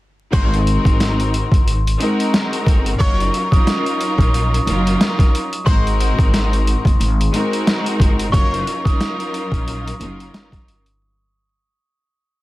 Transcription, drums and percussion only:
0.33 kick loud
0.33 closed hi-hat medium
0.54 closed hi-hat soft
0.67 closed hi-hat medium
0.85 kick loud
0.85 closed hi-hat medium
1.00 snare loud
1.00 closed hi-hat medium
1.20 closed hi-hat soft
1.34 closed hi-hat medium
1.52 kick medium
1.52 closed hi-hat medium
1.68 closed hi-hat medium
1.87 closed hi-hat medium
2.01 closed hi-hat medium
2.20 closed hi-hat medium
2.34 snare loud
2.34 closed hi-hat medium
2.53 closed hi-hat medium
2.66 kick medium
2.66 closed hi-hat medium
2.86 closed hi-hat medium
3.00 kick loud
3.00 closed hi-hat medium
3.20 closed hi-hat soft
3.34 closed hi-hat medium
3.52 kick loud
3.52 closed hi-hat medium
3.67 snare loud
3.67 closed hi-hat loud
3.86 closed hi-hat soft
4.01 closed hi-hat medium
4.18 kick medium
4.18 closed hi-hat medium
4.34 closed hi-hat medium
4.54 closed hi-hat medium
4.67 closed hi-hat medium
4.87 closed hi-hat medium
5.01 snare loud
5.01 closed hi-hat medium
5.19 kick medium
5.19 snare soft
5.19 closed hi-hat medium
5.35 closed hi-hat medium
5.53 closed hi-hat medium
5.67 kick loud
5.67 closed hi-hat medium
5.87 closed hi-hat soft
6.01 closed hi-hat medium
6.19 kick loud
6.19 closed hi-hat medium
6.34 snare loud
6.34 closed hi-hat loud
6.53 closed hi-hat soft
6.67 closed hi-hat medium
6.85 kick medium
6.85 closed hi-hat medium
7.01 closed hi-hat medium
7.21 closed hi-hat medium
7.34 closed hi-hat medium
7.53 closed hi-hat medium
7.67 snare loud
7.67 closed hi-hat loud
7.86 closed hi-hat medium
8.00 kick medium
8.00 closed hi-hat medium
8.19 closed hi-hat medium
8.33 kick loud
8.33 closed hi-hat loud
8.54 closed hi-hat soft
8.67 closed hi-hat medium
8.85 kick loud
8.85 closed hi-hat medium
9.01 snare loud
9.01 closed hi-hat loud
9.20 closed hi-hat soft
9.34 closed hi-hat medium
9.52 kick medium
9.52 closed hi-hat medium
9.68 closed hi-hat medium
9.88 closed hi-hat medium
10.01 closed hi-hat medium
10.20 closed hi-hat medium
10.34 snare loud
10.34 closed hi-hat medium
10.52 kick medium
10.52 snare soft
10.52 closed hi-hat medium
10.68 closed hi-hat medium
10.86 closed hi-hat medium

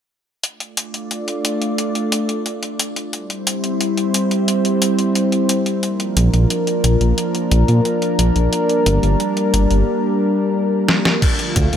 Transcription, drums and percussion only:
0.44 closed hi-hat medium
0.60 closed hi-hat soft
0.77 closed hi-hat medium
0.94 closed hi-hat soft
1.11 closed hi-hat medium
1.28 closed hi-hat soft
1.45 closed hi-hat medium
1.62 closed hi-hat soft
1.78 closed hi-hat medium
1.95 closed hi-hat soft
2.12 closed hi-hat medium
2.29 closed hi-hat soft
2.46 closed hi-hat medium
2.63 closed hi-hat soft
2.79 closed hi-hat medium
2.96 closed hi-hat soft
3.13 closed hi-hat medium
3.30 closed hi-hat soft
3.47 closed hi-hat medium
3.64 closed hi-hat soft
3.81 closed hi-hat medium
3.97 closed hi-hat soft
4.14 closed hi-hat medium
4.31 closed hi-hat soft
4.48 closed hi-hat medium
4.65 closed hi-hat soft
4.82 closed hi-hat medium
4.99 closed hi-hat soft
5.15 closed hi-hat medium
5.32 closed hi-hat soft
5.49 closed hi-hat medium
5.66 closed hi-hat soft
5.83 closed hi-hat medium
6.00 closed hi-hat soft
6.17 closed hi-hat medium
6.34 closed hi-hat soft
6.50 closed hi-hat medium
6.67 closed hi-hat soft
6.84 closed hi-hat medium
7.01 closed hi-hat soft
7.18 closed hi-hat medium
7.35 closed hi-hat soft
7.51 closed hi-hat medium
7.68 closed hi-hat soft
7.85 closed hi-hat medium
8.02 closed hi-hat soft
8.19 closed hi-hat medium
8.36 closed hi-hat soft
8.53 closed hi-hat medium
8.69 closed hi-hat soft
8.86 closed hi-hat medium
9.03 closed hi-hat soft
9.20 closed hi-hat medium
9.37 closed hi-hat soft
9.54 closed hi-hat medium
9.71 closed hi-hat soft
10.89 snare medium
11.05 snare medium
11.22 kick loud
11.22 closed hi-hat medium
11.22 crash medium
11.39 closed hi-hat soft
11.56 kick loud
11.56 closed hi-hat medium
11.73 closed hi-hat soft

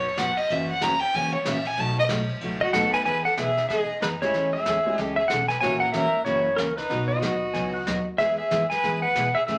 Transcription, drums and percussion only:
0.17 snare medium
0.17 hi-hat pedal medium
0.17 ride medium
0.38 ride medium
0.50 ride medium
0.81 snare medium
0.81 hi-hat pedal medium
0.81 ride medium
1.01 ride medium
1.14 ride medium
1.45 snare medium
1.45 hi-hat pedal medium
1.45 ride medium
1.65 ride medium
1.77 ride medium
2.09 snare medium
2.09 hi-hat pedal medium
2.09 ride medium
2.29 ride medium
2.41 ride medium
2.73 snare medium
2.73 hi-hat pedal medium
2.73 ride medium
2.93 ride medium
3.06 brush sweep medium
3.06 snare soft
3.37 snare medium
3.37 hi-hat pedal medium
3.57 snare soft
3.70 brush sweep soft
3.70 snare soft
4.02 snare medium
4.02 hi-hat pedal medium
4.22 snare soft
4.34 brush sweep medium
4.34 snare soft
4.66 snare medium
4.66 hi-hat pedal medium
4.98 brush sweep soft
4.98 snare soft
5.30 snare medium
5.30 hi-hat pedal medium
5.50 snare soft
5.62 brush sweep soft
5.62 snare soft
5.94 snare medium
5.94 hi-hat pedal medium
6.26 brush sweep soft
6.26 snare soft
6.58 snare medium
6.58 hi-hat pedal medium
6.78 snare soft
6.90 brush sweep medium
6.90 snare soft
7.22 snare medium
7.22 hi-hat pedal medium
7.54 brush sweep medium
7.54 snare soft
7.87 snare medium
7.87 hi-hat pedal medium
8.19 brush sweep soft
8.19 snare soft
8.51 snare medium
8.51 hi-hat pedal medium
8.71 snare soft
8.83 brush sweep soft
8.83 snare soft
9.16 snare medium
9.16 hi-hat pedal medium
9.48 brush sweep medium
9.48 snare soft

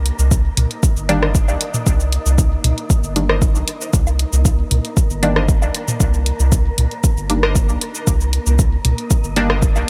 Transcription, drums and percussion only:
0.06 closed hi-hat medium
0.19 cabasa soft
0.31 kick loud
0.31 cabasa medium
0.57 closed hi-hat medium
0.57 mid tom medium
0.71 closed hi-hat soft
0.83 kick loud
0.83 cabasa medium
0.97 cabasa soft
1.09 closed hi-hat medium
1.23 cross-stick medium
1.35 kick loud
1.35 cabasa medium
1.48 cabasa soft
1.48 low woodblock medium
1.61 closed hi-hat medium
1.74 mid tom medium
1.74 cabasa soft
1.87 kick loud
1.87 cabasa medium
2.00 cabasa soft
2.12 closed hi-hat medium
2.26 cabasa soft
2.38 kick loud
2.38 cabasa medium
2.64 closed hi-hat medium
2.64 mid tom medium
2.78 closed hi-hat soft
2.90 kick loud
2.90 cabasa medium
3.04 cabasa soft
3.16 closed hi-hat medium
3.29 cross-stick medium
3.42 kick loud
3.42 cabasa medium
3.55 cabasa soft
3.68 closed hi-hat medium
3.81 cabasa soft
3.93 kick loud
3.93 cabasa medium
4.07 cabasa soft
4.07 low woodblock medium
4.19 closed hi-hat medium
4.33 cabasa soft
4.45 kick loud
4.45 cabasa medium
4.71 closed hi-hat medium
4.71 mid tom medium
4.85 closed hi-hat soft
4.97 kick loud
4.97 cabasa medium
5.10 cabasa soft
5.23 closed hi-hat medium
5.36 cross-stick medium
5.49 kick loud
5.49 cabasa medium
5.62 cabasa soft
5.62 low woodblock medium
5.75 closed hi-hat medium
5.88 mid tom medium
5.88 cabasa soft
6.00 kick loud
6.00 cabasa medium
6.14 cabasa soft
6.26 closed hi-hat medium
6.40 cabasa soft
6.52 kick loud
6.52 cabasa medium
6.78 closed hi-hat medium
6.78 mid tom medium
6.91 closed hi-hat soft
7.04 kick loud
7.04 cabasa medium
7.17 cabasa soft
7.30 closed hi-hat medium
7.43 cross-stick medium
7.55 kick loud
7.55 cabasa medium
7.69 cabasa soft
7.81 closed hi-hat medium
7.95 cabasa soft
8.07 kick loud
8.07 cabasa medium
8.21 cabasa soft
8.33 closed hi-hat medium
8.47 cabasa soft
8.59 kick loud
8.59 cabasa medium
8.85 closed hi-hat medium
8.85 mid tom medium
8.98 closed hi-hat soft
9.11 kick loud
9.11 cabasa medium
9.24 cabasa soft
9.36 closed hi-hat medium
9.50 cross-stick medium
9.62 kick loud
9.62 cabasa medium
9.76 cabasa soft
9.76 low woodblock medium

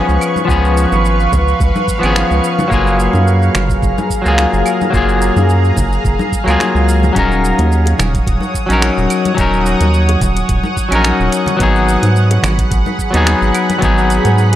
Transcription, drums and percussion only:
0.09 shaker soft
0.21 claves medium
0.21 shaker medium
0.36 high conga medium
0.36 shaker soft
0.49 kick loud
0.49 shaker soft
0.65 shaker soft
0.77 shaker medium
0.92 high conga medium
0.92 shaker soft
1.05 shaker soft
1.20 shaker soft
1.32 kick loud
1.32 low conga medium
1.32 shaker medium
1.48 shaker soft
1.60 kick loud
1.60 shaker soft
1.76 high conga medium
1.76 shaker soft
1.88 kick medium
1.88 shaker medium
2.03 claves medium
2.03 shaker soft
2.16 finger snap medium
2.16 high conga medium
2.16 shaker soft
2.31 shaker soft
2.44 shaker medium
2.59 high conga medium
2.59 low conga medium
2.59 shaker soft
2.71 kick loud
2.71 shaker soft
2.87 shaker soft
3.00 shaker medium
3.13 high conga medium
3.13 shaker soft
3.28 shaker soft
3.43 shaker soft
3.54 finger snap medium
3.54 high conga medium
3.54 low conga medium
3.54 claves medium
3.54 shaker medium
3.70 kick loud
3.70 shaker soft
3.82 kick loud
3.82 shaker soft
3.98 high conga loud
3.98 shaker soft
4.10 kick medium
4.10 shaker medium
4.26 shaker soft
4.38 finger snap medium
4.38 high conga medium
4.38 shaker soft
4.54 shaker soft
4.66 claves medium
4.66 shaker medium
4.81 high conga medium
4.81 shaker soft
4.93 kick loud
4.93 shaker soft
5.09 shaker soft
5.22 shaker medium
5.37 high conga medium
5.37 shaker soft
5.49 shaker soft
5.65 shaker soft
5.76 kick loud
5.76 low conga medium
5.76 shaker medium
5.93 shaker soft
6.05 kick loud
6.05 shaker soft
6.19 high conga medium
6.19 shaker soft
6.32 kick medium
6.32 shaker medium
6.48 claves medium
6.48 shaker soft
6.60 finger snap medium
6.60 high conga medium
6.60 shaker soft
6.76 shaker soft
6.89 shaker medium
7.03 high conga medium
7.03 low conga medium
7.03 shaker soft
7.16 kick loud
7.16 closed hi-hat soft
7.16 shaker soft
7.32 shaker soft
7.44 shaker medium
7.58 closed hi-hat soft
7.58 high conga medium
7.58 shaker soft
7.72 shaker soft
7.86 closed hi-hat medium
7.86 high bongo medium
7.86 shaker soft
7.98 finger snap medium
7.98 closed hi-hat soft
7.98 high conga medium
7.98 low conga medium
7.98 claves medium
7.98 shaker medium
8.14 kick loud
8.14 closed hi-hat soft
8.14 shaker soft
8.27 kick loud
8.27 closed hi-hat soft
8.27 shaker soft
8.40 high conga medium
8.40 shaker soft
8.54 kick medium
8.54 shaker medium
8.70 closed hi-hat soft
8.70 shaker soft
8.82 finger snap medium
8.82 closed hi-hat medium
8.82 high bongo soft
8.82 high conga medium
8.82 shaker soft
8.98 shaker soft
9.10 closed hi-hat soft
9.10 claves medium
9.10 shaker medium
9.25 closed hi-hat soft
9.25 high conga medium
9.25 shaker soft
9.38 kick loud
9.38 closed hi-hat medium
9.38 shaker soft
9.53 shaker soft
9.66 shaker medium
9.81 closed hi-hat soft
9.81 high conga medium
9.81 shaker soft
9.94 shaker soft
10.09 closed hi-hat medium
10.09 high bongo medium
10.09 shaker soft
10.21 kick loud
10.21 closed hi-hat soft
10.21 low conga medium
10.21 shaker medium
10.36 closed hi-hat soft
10.36 high bongo soft
10.36 shaker soft
10.49 kick loud
10.49 closed hi-hat soft
10.49 shaker soft
10.64 high conga medium
10.64 shaker soft
10.77 kick medium
10.77 shaker medium
10.92 closed hi-hat soft
10.92 claves medium
10.92 shaker soft
11.04 finger snap medium
11.04 closed hi-hat medium
11.04 high conga medium
11.04 shaker soft
11.20 shaker soft
11.32 closed hi-hat medium
11.32 shaker medium
11.46 closed hi-hat soft
11.46 high conga medium
11.46 low conga medium
11.46 shaker soft
11.60 kick loud
11.60 closed hi-hat medium
11.60 shaker soft
11.76 shaker soft
11.89 shaker medium
12.02 closed hi-hat soft
12.02 high conga medium
12.02 shaker soft
12.16 shaker soft
12.31 closed hi-hat medium
12.31 high bongo medium
12.31 shaker soft
12.43 finger snap medium
12.43 closed hi-hat soft
12.43 high conga medium
12.43 low conga medium
12.43 claves medium
12.43 shaker medium
12.58 kick medium
12.58 closed hi-hat soft
12.58 shaker soft
12.71 kick loud
12.71 closed hi-hat medium
12.71 shaker soft
12.86 high conga medium
12.86 shaker soft
12.99 kick medium
12.99 shaker medium
13.14 closed hi-hat soft
13.14 shaker soft
13.27 finger snap medium
13.27 closed hi-hat medium
13.27 high bongo medium
13.27 high conga medium
13.27 shaker soft
13.42 shaker soft
13.55 closed hi-hat medium
13.55 claves medium
13.55 shaker medium
13.70 closed hi-hat soft
13.70 high conga medium
13.70 shaker soft
13.82 kick loud
13.82 closed hi-hat medium
13.82 shaker soft
13.98 shaker soft
14.10 closed hi-hat soft
14.10 shaker medium
14.25 closed hi-hat soft
14.25 high conga medium
14.25 shaker soft
14.38 shaker soft

